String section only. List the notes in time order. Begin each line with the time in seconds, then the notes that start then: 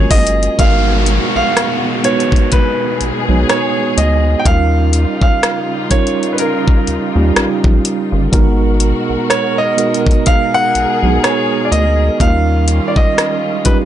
Already playing: F#3 G#3 A#3 G#4
0.59 B2 G#3 B3 F#4
2.52 G#4
4.45 C#3 G3 D#4 F4
8.33 B2 G#3 F#4 A#4
10.26 G#4
12.20 D#3 G3 C#4 F4